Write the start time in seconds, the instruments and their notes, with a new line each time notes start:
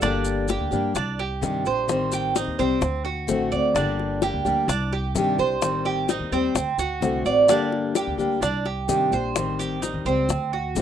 0.01 upright bass G1, steel-string acoustic guitar D3 G3 A#3 D4 G4, cuban tres D4, high bongo, maracas
0.25 high bongo, maracas
0.48 steel-string acoustic guitar G3 A#3 D4 G4, cuban tres G4, high bongo, maracas
0.60 upright bass D2
0.71 upright bass G2, steel-string acoustic guitar G3 A#3 D4 G4, maracas
0.95 upright bass C2, cuban tres D4, muted steel-string acoustic guitar stroke, high bongo, maracas
1.19 cuban tres G4, high bongo
1.41 upright bass G2, steel-string acoustic guitar C3 D#3 G3 D4 G4, high bongo, low bongo, maracas
1.65 upright bass A#1, steel-string acoustic guitar G3 D4 G4, cuban tres C5, high bongo, maracas
1.88 upright bass A1, steel-string acoustic guitar D#3 G3 C4, high bongo, maracas
2.12 cuban tres G4, high bongo, maracas
2.35 steel-string acoustic guitar D#3 G3 C4, cuban tres D#4, high bongo, maracas
2.47 upright bass D#2
2.59 upright bass C2, steel-string acoustic guitar G3 C4, cuban tres C4, maracas
2.81 upright bass D2, muted steel-string acoustic guitar stroke, high bongo, maracas
3.05 cuban tres F#4, high bongo
3.27 upright bass A1, steel-string acoustic guitar D3 A3 C4 F#4, high bongo, low bongo, maracas
3.52 upright bass D2, steel-string acoustic guitar A3 C4 F#4, cuban tres D5, high bongo, maracas
3.74 upright bass G1, steel-string acoustic guitar D3 G3 A#3 D4 G4, cuban tres D4, high bongo, maracas
3.99 high bongo
4.22 steel-string acoustic guitar G3 A#3 D4 G4, cuban tres G4, high bongo, maracas
4.33 upright bass D2
4.45 upright bass D2, steel-string acoustic guitar G3 A#3 D4 G4, maracas
4.68 upright bass C2, cuban tres D4, muted steel-string acoustic guitar stroke, high bongo, maracas
4.93 cuban tres G4, high bongo
5.15 upright bass G2, steel-string acoustic guitar C3 D#3 G3 D4 G4, high bongo, low bongo, maracas
5.38 upright bass C2, steel-string acoustic guitar G3 D4 G4, cuban tres C5, high bongo, maracas
5.61 upright bass A1, steel-string acoustic guitar D#3 G3 C4, high bongo, maracas
5.85 cuban tres G4, high bongo
6.09 steel-string acoustic guitar D#3 G3 C4, cuban tres D#4, high bongo, maracas
6.19 upright bass D#2
6.32 upright bass D#2, steel-string acoustic guitar G3 C4, cuban tres C4, maracas
6.55 upright bass D2, muted steel-string acoustic guitar stroke, high bongo, maracas
6.78 upright bass D2, cuban tres F#4, high bongo, maracas
7.01 upright bass C2, steel-string acoustic guitar D3 A3 C4 F#4, high bongo, low bongo, maracas
7.25 upright bass A1, steel-string acoustic guitar A3 C4 F#4, cuban tres D5, high bongo, maracas
7.48 upright bass G1, steel-string acoustic guitar D3 G3 A#3 D4 G4, cuban tres D4, high bongo, maracas
7.72 high bongo
7.95 steel-string acoustic guitar G3 A#3 D4 G4, cuban tres G4, high bongo, maracas
8.07 upright bass D2
8.18 upright bass D2, steel-string acoustic guitar G3 A#3 D4 G4, maracas
8.41 upright bass C2, cuban tres D4, muted steel-string acoustic guitar stroke, high bongo, maracas
8.65 cuban tres G4, high bongo
8.88 upright bass G2, steel-string acoustic guitar C3 D#3 G3 D4 G4, high bongo, low bongo, maracas
9.11 upright bass A#1, steel-string acoustic guitar G3 D4 G4, cuban tres C5, high bongo, maracas
9.35 upright bass A1, steel-string acoustic guitar D#3 G3 C4, high bongo, maracas
9.59 cuban tres G4, high bongo, maracas
9.81 steel-string acoustic guitar D#3 G3 C4, cuban tres D#4, high bongo, maracas
9.94 upright bass D#2
10.05 upright bass C#2, steel-string acoustic guitar G3 C4, cuban tres C4, maracas
10.29 upright bass D2, muted steel-string acoustic guitar stroke, high bongo, maracas
10.53 cuban tres F#4, high bongo
10.75 upright bass A1, steel-string acoustic guitar D3 A3 C4, high bongo, low bongo, maracas